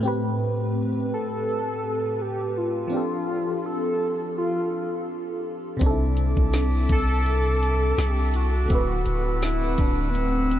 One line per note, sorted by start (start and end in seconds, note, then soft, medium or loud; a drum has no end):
0.00 2.86 A2 medium
0.00 2.87 A3 medium
0.00 2.88 C4 medium
0.05 2.89 G4 medium
0.05 2.90 B4 loud
1.14 2.23 A4 loud
2.21 2.51 G4 loud
2.51 2.59 G4 medium
2.57 3.67 F4 loud
2.87 5.75 F3 medium
2.87 5.76 C4 medium
2.92 5.77 D4 medium
2.92 5.78 G4 medium
2.97 5.79 A4 medium
3.66 4.37 A4 loud
4.38 5.42 F4 medium
5.77 8.64 C3 medium
5.77 8.65 C4 medium
5.81 6.35 C2 loud
5.81 10.60 C4 medium
5.81 8.66 D4 medium
5.81 5.89 D#4 medium
5.81 8.68 E5 medium
5.81 8.68 A5 medium
5.81 8.68 D6 loud
5.81 kick loud
5.81 closed hi-hat medium
5.86 8.69 A4 loud
5.90 8.70 E4 medium
6.17 closed hi-hat medium
6.37 6.87 C2 loud
6.37 kick medium
6.53 snare loud
6.53 closed hi-hat medium
6.89 7.94 C2 loud
6.89 8.01 A4 loud
6.89 kick loud
6.89 closed hi-hat medium
7.26 closed hi-hat medium
7.63 closed hi-hat medium
7.98 8.67 C2 loud
7.98 8.35 G4 loud
7.98 snare loud
7.98 closed hi-hat medium
8.34 9.39 F#4 loud
8.34 closed hi-hat medium
8.66 10.60 D3 medium
8.66 10.60 A3 medium
8.66 10.60 C4 medium
8.70 9.05 D1 loud
8.70 10.60 E4 medium
8.70 10.60 F#4 medium
8.70 10.60 F#5 medium
8.70 10.60 B5 medium
8.70 10.60 E6 medium
8.70 kick loud
8.70 closed hi-hat medium
8.75 10.60 B4 medium
9.06 9.76 D1 loud
9.06 closed hi-hat medium
9.42 9.82 E4 loud
9.42 snare loud
9.42 closed hi-hat medium
9.78 10.60 D1 loud
9.78 10.11 D4 medium
9.78 kick loud
9.78 closed hi-hat medium
10.10 10.18 B3 medium
10.15 10.60 C4 medium
10.15 closed hi-hat medium
10.51 closed hi-hat medium